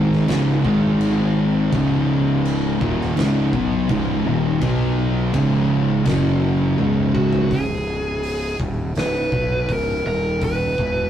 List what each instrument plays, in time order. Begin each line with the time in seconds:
Already playing: fingered electric bass G#1, distorted electric guitar G#2 D#3 G#3
0.13 snare
0.28 fingered electric bass C#1, distorted electric guitar C#2 G#2 C#3, snare, crash
0.65 fingered electric bass G#1, distorted electric guitar G#2 D#3 G#3, kick
1.00 crash
1.72 fingered electric bass C#1, distorted electric guitar C#2 G#2 C#3, kick, crash
2.45 crash
2.81 fingered electric bass D#1, distorted electric guitar D#2 A#2 D#3, kick
3.01 snare
3.17 fingered electric bass C#1, distorted electric guitar C#2 G#2 C#3, snare, crash
3.53 fingered electric bass B1, distorted electric guitar B2 F#3 B3, kick
3.89 fingered electric bass C#1, distorted electric guitar C#2 G#2 C#3, kick, crash
4.25 fingered electric bass D#1, distorted electric guitar D#2 A#2 D#3
4.61 fingered electric bass B1, distorted electric guitar B2 F#3 B3, kick, crash
5.34 fingered electric bass C#1, distorted electric guitar C#2 G#2 C#3, kick, crash
6.05 fingered electric bass F#1, distorted electric guitar F#2 C#3 F#3, kick, snare, crash
6.78 fingered electric bass C#1, distorted electric guitar C#2 G#2 C#3, high tom
7.14 lead electric guitar F#4, kick
7.33 floor tom
7.51 fingered electric bass C#1, lead electric guitar G#4, kick, open hi-hat
8.23 open hi-hat
8.60 fingered electric bass D#1, kick
8.95 fingered electric bass C#1, lead electric guitar B4, snare, open hi-hat
9.32 fingered electric bass B1, kick
9.69 fingered electric bass C#1, lead electric guitar A#4, kick, open hi-hat
10.06 fingered electric bass D#1, lead electric guitar A#4
10.41 lead electric guitar B4, kick, open hi-hat
10.78 fingered electric bass E1, kick